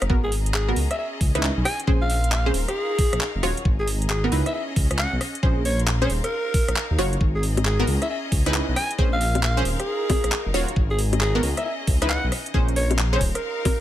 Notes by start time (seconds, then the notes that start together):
Already playing: D#4 A#4
0.02 F#1, cross-stick, closed hi-hat
0.10 B3 F#4 G#4 A#4, kick
0.24 G#4
0.32 open hi-hat
0.38 D#5 A#5
0.46 closed hi-hat
0.54 G#4, clap
0.68 B3 F#4 A#4
0.76 C#2 C#4, open hi-hat
0.91 E5, cross-stick, closed hi-hat
0.98 E5
1.21 C#2, kick, open hi-hat
1.35 C#2 D#4 E4 B4, cross-stick, closed hi-hat
1.43 clap
1.57 B1
1.65 G#5, cross-stick, open hi-hat
1.80 closed hi-hat
1.87 A#1 C#4 G#4 A#4 C5, kick
2.02 F5
2.10 open hi-hat
2.20 F5 C6
2.24 closed hi-hat
2.32 F5, clap
2.46 C#4 G#4 C5
2.54 D#1 D#4, open hi-hat
2.68 G#4, cross-stick, closed hi-hat
2.99 kick, open hi-hat
3.13 A#1, cross-stick, closed hi-hat
3.21 clap
3.35 F#1
3.43 D#1 F4 F#4 C#5, cross-stick, open hi-hat
3.57 closed hi-hat
3.65 G#1 G#4, kick
3.80 G#4
3.87 D#5, open hi-hat
3.97 A#5
4.02 closed hi-hat
4.10 G#4, clap
4.24 B3 F#4 A#4
4.32 C#2 C#4 D#4 E4 B4, open hi-hat
4.46 E5, cross-stick, closed hi-hat
4.54 E5
4.76 C#2, kick, open hi-hat
4.91 C#2, cross-stick, closed hi-hat
4.99 F#5, clap
5.13 B1
5.21 cross-stick, open hi-hat
5.35 closed hi-hat
5.43 A#1 C#4 G#4 A#4 C5, kick
5.60 F5
5.65 C#5, open hi-hat
5.75 C6
5.80 closed hi-hat
5.87 clap
6.02 C#4 G#4 C5 C#5
6.10 D#1 D#4, open hi-hat
6.24 A#4, cross-stick, closed hi-hat
6.54 kick, open hi-hat
6.68 A#1, cross-stick, closed hi-hat
6.76 clap
6.91 D#2
6.98 F#1 F4 F#4 C#5, cross-stick, open hi-hat
7.13 closed hi-hat
7.21 G#1 G#4, kick
7.35 G#4
7.43 open hi-hat
7.53 D#5 A#5
7.57 closed hi-hat, high bongo
7.65 G#4, clap
7.79 B3 F#4 A#4
7.87 C#2 C#4, open hi-hat
8.02 E5, cross-stick, closed hi-hat
8.10 E5
8.32 C#2, kick, open hi-hat
8.46 C#2 D#4 E4 B4, cross-stick, closed hi-hat
8.54 clap
8.68 B1
8.76 G#5, cross-stick, open hi-hat
8.91 closed hi-hat
8.98 A#1 C#4 G#4 A#4 C5, kick
9.13 F5
9.21 open hi-hat
9.31 F5 C6
9.35 closed hi-hat, high bongo
9.43 F5, clap
9.57 C#4 G#4 C5
9.65 D#1 D#4, open hi-hat
9.80 G#4, cross-stick, closed hi-hat
10.10 kick, open hi-hat, high bongo
10.24 A#1, cross-stick, closed hi-hat
10.32 clap
10.46 F#1
10.54 D#1 F4 F#4 C#5, cross-stick, open hi-hat
10.68 closed hi-hat
10.76 G#1 G#4, kick
10.91 G#4
10.99 open hi-hat
11.09 D#5 A#5
11.13 closed hi-hat, high bongo
11.21 G#4, clap
11.35 B3 F#4 A#4
11.43 C#2 C#4, open hi-hat
11.57 E5, cross-stick, closed hi-hat
11.65 E5
11.87 C#2, kick, open hi-hat
12.02 C#2 D#4 E4 B4, cross-stick, closed hi-hat
12.10 F#5, clap
12.24 B1
12.32 cross-stick, open hi-hat
12.46 closed hi-hat
12.54 A#1 C#4 G#4 A#4 C5, kick
12.68 closed hi-hat
12.76 C#5, open hi-hat
12.86 F5 C6
12.91 closed hi-hat, high bongo
12.99 clap
13.13 C#4 G#4 C5 C#5
13.21 D#1 D#4, kick, open hi-hat
13.35 A#4, cross-stick, closed hi-hat
13.65 kick, open hi-hat, high bongo